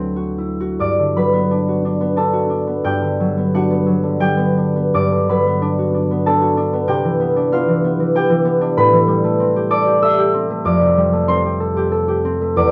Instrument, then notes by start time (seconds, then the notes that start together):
harp
Already playing: D2 F#3 B3 C4 D4 E4 F#4 B4 C5 D5
0.16 F#4
0.38 E4
0.61 F#4
0.80 G2 D5 D6
0.99 D3
1.16 F#3 B4 B5
1.33 B3
1.51 D4
1.69 F#4
1.85 D4
2.01 B3
2.17 D4 A4 A5
2.33 F#4
2.50 D4
2.67 B3
2.84 G2 G4 G5
3.02 D3
3.20 F#3
3.38 B3
3.54 D4 F#4 F#5
3.71 B3
3.86 F#3
4.03 D3
4.20 F#3 G4 G5
4.37 B3
4.58 D4
4.76 B3
4.94 G2 D5 D6
5.12 D3
5.29 F#3 B4 B5
5.47 B3
5.62 D4
5.79 F#4
5.95 D4
6.11 B3
6.26 D4 A4 A5
6.41 F#4
6.57 D4
6.73 B3
6.88 C3 G4 G5
7.05 E3
7.20 B3
7.36 D4
7.52 B3 F4 F5
7.68 E3
7.84 B3
7.99 E3
8.15 B3 G4 G5
8.30 E3
8.45 B3
8.61 D4
8.77 A2 B4 B5
8.93 E3
9.08 G3
9.24 A3
9.40 C4
9.56 G4
9.71 A4 D5 D6
9.86 G4
10.02 A4 E5 E6
10.18 G4
10.34 C4
10.50 A3
10.65 F2 D5 D6
10.81 C3
10.97 G3
11.13 A3
11.28 C4 C5 C6
11.45 G4
11.60 A4
11.77 G4
11.92 A4
12.08 G4
12.25 C4
12.41 A3
12.56 E2 D5 D6